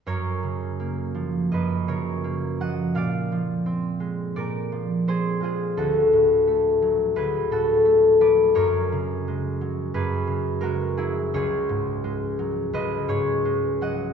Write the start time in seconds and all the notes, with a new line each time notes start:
0.06 F#2 A#4 C#5
0.43 C#3
0.80 A#3
1.15 F3
1.52 F#2 B4 D#5
1.88 C#3 A#4 C#5
2.24 A#3
2.60 F3 D#5 F#5
2.95 A#2 D5 F5
3.32 F3
3.66 C4
4.00 G#3
4.36 A#2 A#4 D5
4.72 F3
5.08 C4 G#4 C5
5.40 G#3 F4 G#4
5.77 D2 F#4 A4
6.13 A2
6.47 A3
6.82 F#3
7.16 D2 G#4 B4
7.51 A2 F#4 A4
7.85 A3
8.20 F#3 B4 D5
8.55 F#2 A#4 C#5
8.92 C#3
9.28 G#3
9.61 F#3
9.94 F#2 G#4 B4
10.27 C#3
10.61 G#3 F#4 A#4
10.97 F#3 E4 G#4
11.34 C#2 G#4 C#5
11.69 G#2
12.04 G#3
12.39 F#3
12.73 C#2 B4 D#5
13.08 G#2 G#4 C#5
13.45 G#3
13.81 F#3 D#5 F#5